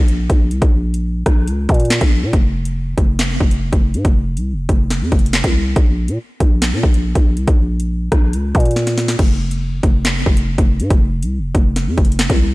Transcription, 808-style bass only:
0.00 0.28 A#1 loud
0.30 0.53 A#1 loud
0.51 0.61 C2 loud
0.62 1.24 A#1 loud
1.26 1.49 A#1 loud
1.48 1.68 C#2 loud
1.69 2.00 A#2 loud
2.01 2.24 A#1 loud
2.23 2.33 A#2 loud
2.33 2.95 F1 loud
2.98 3.39 F1 loud
3.40 3.71 F1 loud
3.73 3.96 F1 loud
3.94 4.04 G#2 loud
4.05 4.38 F1 loud
4.37 4.54 C2 loud
4.53 4.68 F1 loud
4.69 5.03 F1 loud
5.01 5.11 F2 loud
5.12 5.43 F1 loud
5.44 5.75 C2 loud
5.76 6.10 A#1 loud
6.08 6.18 A#2 loud
6.40 6.74 A#1 loud
6.73 6.83 A#2 loud
6.83 7.14 A#1 loud
7.15 7.38 A#1 loud
7.37 7.47 C2 loud
7.48 8.09 A#1 loud
8.12 8.35 A#1 loud
8.33 8.54 C#2 loud
8.55 9.16 A#2 loud
9.19 9.81 F1 loud
9.83 10.24 F1 loud
10.26 10.57 F1 loud
10.58 10.81 F1 loud
10.80 10.90 G#2 loud
10.90 11.24 F1 loud
11.23 11.40 C2 loud
11.39 11.54 F1 loud
11.55 11.88 F1 loud
11.87 11.97 F2 loud
11.98 12.28 F1 loud
12.30 12.54 C2 loud

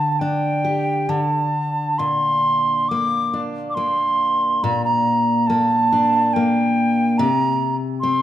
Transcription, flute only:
0.00 0.12 A5 medium
0.12 0.21 A5 soft
0.19 1.11 G5 medium
1.09 2.00 A5 medium
1.98 2.90 C6 medium
2.89 3.42 D6 medium
3.70 3.76 D6 medium
3.74 4.65 C6 medium
4.63 4.84 A#5 medium
4.85 5.48 A#5 medium
5.47 6.35 A5 medium
6.33 7.19 G5 medium
7.18 7.77 A#5 medium
8.00 8.22 C6 loud

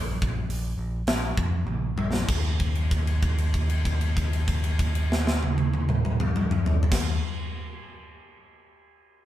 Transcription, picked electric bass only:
0.00 0.15 A#1 medium
0.22 0.44 A#1 medium
0.49 0.72 A#1 medium
0.78 1.01 A#1 medium
1.07 1.30 A#1 medium
1.37 1.60 F2 medium
1.66 1.90 A#1 medium
1.96 2.21 A#1 medium
2.28 6.80 D#2 medium
6.91 7.18 D#2 medium

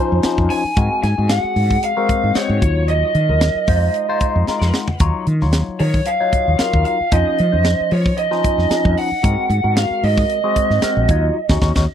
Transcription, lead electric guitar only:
0.00 0.58 C5 medium
0.50 1.02 G#5 loud
1.04 1.30 G#5 loud
1.31 1.84 F#5 medium
1.84 2.38 F5 loud
2.36 2.89 C#5 medium
2.90 4.70 D#5 medium
5.81 6.07 C#5 medium
6.06 6.58 F5 medium
6.59 6.84 F5 medium
6.86 7.13 F5 medium
7.12 7.93 D#5 loud
7.93 8.17 C#5 medium
8.18 8.94 D#5 medium
8.99 9.74 F#5 loud
9.78 10.05 F5 loud
10.04 11.94 D#5 medium

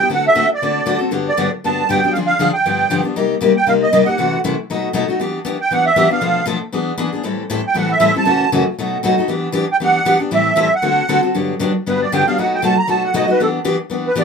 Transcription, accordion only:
0.14 0.25 F#5 medium
0.27 0.50 E5 medium
0.54 1.00 D5 medium
1.29 1.51 D5 medium
1.66 1.91 A5 medium
1.90 2.13 G5 medium
2.12 2.19 F5 medium
2.27 2.51 F5 medium
2.54 3.01 G5 medium
3.57 3.68 G5 loud
3.68 3.74 F5 medium
3.82 4.08 D#5 medium
4.06 4.41 F#5 medium
5.61 5.72 G5 loud
5.73 5.85 F#5 medium
5.86 6.10 E5 medium
6.12 6.46 F5 medium
7.67 7.77 G5 medium
7.78 7.91 F#5 medium
7.91 8.15 E5 medium
8.17 8.51 A5 medium
9.72 9.77 G5 loud
9.84 10.20 F#5 medium
10.35 10.60 E5 medium
10.61 10.74 E5 medium
10.75 11.21 F#5 medium
11.88 12.01 B4 medium
12.02 12.12 D5 medium
12.14 12.27 G5 medium
12.27 12.38 F5 medium
12.39 12.52 F#5 medium
12.55 12.64 G5 medium
12.65 12.78 A5 medium
12.78 12.89 A#5 loud
12.90 13.03 A5 medium
13.05 13.15 F#5 medium
13.16 13.29 D#5 medium
13.31 13.41 B4 medium
13.41 13.49 A4 medium
14.08 14.18 B4 medium
14.19 14.24 D5 medium

